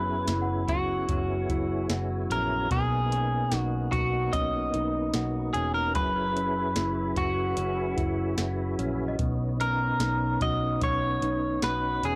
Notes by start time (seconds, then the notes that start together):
Already playing: F#1 F#2 F#3 B3 C#4 E4 F#4 G#4 B4
0.28 F#1 E4, snare, closed hi-hat
0.42 F#5
0.69 F#1 F#4, kick, closed hi-hat
1.09 F#1 C#4, kick, closed hi-hat
1.50 F#1 E4, kick, closed hi-hat
1.90 F#1 F#4, snare, closed hi-hat
2.30 A#1 C#4 A#4, closed hi-hat
2.71 B1 B2 A#3 B3 D#4 G#4, kick, closed hi-hat
3.12 C#4, closed hi-hat
3.52 B1 D#4, snare, closed hi-hat
3.58 F#4
3.92 B1 F#4, kick, closed hi-hat
4.33 B1 C#4 D#5, kick, closed hi-hat
4.74 B1 D#4, closed hi-hat
5.14 B1 F#4, snare, closed hi-hat
5.53 E1 C#4 G#4, closed hi-hat
5.74 A#4
5.95 F#1 F#2 F#3 C#4 E4 G#4 B4, kick, closed hi-hat
6.36 C#4, closed hi-hat
6.76 F#1 E4, snare, closed hi-hat
7.16 F#1 F#4, kick, closed hi-hat
7.57 F#1 C#4, closed hi-hat
7.97 F#1 E4, kick, closed hi-hat
8.38 F#1 F#4, snare, closed hi-hat
8.79 A#1 C#4, closed hi-hat
9.08 D#5
9.19 B1 B2 B3 C#4 D#4, kick, closed hi-hat
9.60 C#4 A#4, closed hi-hat
10.00 B1 D#4, snare, closed hi-hat
10.41 B1 F#4 D#5, kick, closed hi-hat
10.81 B1 C#4 C#5, kick, closed hi-hat
11.22 B1 D#4, closed hi-hat
11.62 B1 F#4 B4, snare, closed hi-hat
12.03 E1 C#4 G#4, closed hi-hat